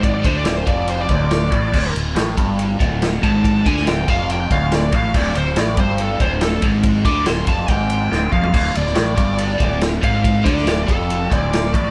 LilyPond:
<<
  \new Staff \with { instrumentName = "Lead electric guitar" } { \time 4/4 \key d \minor \tempo 4 = 141 d''16 d''16 c''16 d''16 d''16 c''16 d''16 d''16 c''16 d''16 d''4.~ | d''8 r2. a''8~ | a''8 gis''8 g''8 f''8 g''8 f''8 d''8 f''8 | d''8 c''8 d''8 c''8 a'8 c''8 a'8 r8 |
r8 d'''8 c'''8 a''8 g''4. f''8 | f''8 d''8 d''2 r8 f''8~ | f''8 d''4 a'4 d''4. | }
  \new Staff \with { instrumentName = "Overdriven electric guitar" } { \clef bass \time 4/4 \key d \minor gis,8 d8 d,8 f,4 d,4 a,8 | d,8 d,8 a,8 g,4 d,4 gis,8~ | gis,8 d8 d,8 f,4 d,4 a,8 | d,8 d,8 a,8 g,4 d,4 gis,8~ |
gis,8 d8 d,8 f,8 gis,4 d,8 f,8 | d,8 d,8 a,8 g,4 d,4 gis,8~ | gis,8 d8 d,8 f,4 d,4 a,8 | }
  \new Staff \with { instrumentName = "Fingered electric bass" } { \clef bass \time 4/4 \key d \minor gis,,8 d,8 d,,8 f,,4 d,,4 a,,8 | d,,8 d,,8 a,,8 g,,4 d,,4 gis,,8~ | gis,,8 d,8 d,,8 f,,4 d,,4 a,,8 | d,,8 d,,8 a,,8 g,,4 d,,4 gis,,8~ |
gis,,8 d,8 d,,8 f,,8 gis,,4 d,,8 f,,8 | d,,8 d,,8 a,,8 g,,4 d,,4 gis,,8~ | gis,,8 d,8 d,,8 f,,4 d,,4 a,,8 | }
  \new DrumStaff \with { instrumentName = "Drums" } \drummode { \time 4/4 <bd cymr>8 <bd cymr>8 <cymr sn>8 <bd cymr>8 cymr8 <bd cymr>8 <cymr sn>8 <bd cymr>8 | <cymc bd>8 cymr8 <cymr sn>8 <bd cymr>8 cymr8 <bd cymr>8 <cymr sn>8 <bd cymr>8 | <bd cymr>8 <bd cymr>16 sn16 <cymr sn>8 <bd cymr>8 cymr8 <bd cymr>8 <cymr sn>8 <bd cymr>8 | <cymc bd>8 cymr8 <cymr sn>8 <bd cymr>8 cymr8 <bd cymr>8 <cymr sn>8 <bd cymr>8 |
<bd cymr>8 <bd cymr>8 <cymr sn>8 <bd cymr>8 <bd cymr>8 cymr8 sn8 bd16 tomfh16 | <cymc bd>8 cymr16 sn16 <cymr sn>8 <bd cymr>8 cymr8 <bd cymr>8 <cymr sn>8 <bd cymr>8 | <bd cymr>8 <bd cymr>16 sn16 <cymr sn>8 <bd cymr>8 cymr8 <bd cymr>8 <cymr sn>8 <bd cymr>8 | }
>>